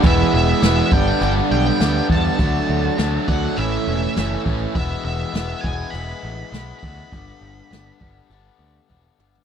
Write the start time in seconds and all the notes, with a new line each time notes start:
0.02 E1 E2 B2 E3 G#3 B3 E4 G#4, kick, closed hi-hat
0.07 E5
0.31 E1 E3 B3 E4 G#4 E5
0.62 E1 E3 G#3 B3 E4 G#4, snare, closed hi-hat
0.91 G1 G2 D3 G3 B3 D4 G4 G5, kick
1.21 G1 G2 D3 G3 B3 D4 G5, closed hi-hat
1.51 B1 G3 B3 D4 G4 G5
1.79 D2 G2 D3 G3 B3 D4 G4, snare, closed hi-hat
2.09 E2 G2 D3 G3 B3 D4 A5, kick
2.38 D2 D3 F#3 A3 D4 F#4, kick, closed hi-hat
2.66 D2 A3 D4 F#4
2.97 D2 D3 F#3 A3 D4 F#4, snare, closed hi-hat
3.27 D2 D3 F#3 A3 D4 F#4 F#5, kick
3.57 A1 A2 E3 A3 C#4 E4 E5, closed hi-hat
3.86 E1 A3 C#4 E4
4.16 F#1 A2 E3 A3 C#4 E4, snare, closed hi-hat
4.44 A1 A2 E3 A3 C#4 E4, kick
4.75 E1 E3 G#3 B3 E4 E5, kick, closed hi-hat
5.05 E1 E5
5.34 E1 E3 G#3 B3 E4, snare, closed hi-hat
5.61 E1 E3 G#3 B3 G#5, kick
5.65 E4
5.90 E1 E3 G#3 B3 B5, closed hi-hat
5.95 E4
6.23 A1
6.52 B1 E3 G#3 B3 E4, snare, closed hi-hat
6.79 E3 G#3 B5, kick
6.83 D2 B3 E4
7.11 G1 G2 D3 G3 B3 D4, kick, closed hi-hat
7.41 G1
7.70 G1 G2 D3 G3 B3 D4, snare, closed hi-hat
7.99 G1 G2 D3 G3 B3 D4, kick
8.30 G1 G2 D3 G3 B3 D4, closed hi-hat
8.59 D2
8.88 E1 G2 D3 G3 B3 D4, kick
9.19 G1 G2 D3 G3 B3 D4, mid tom
9.35 floor tom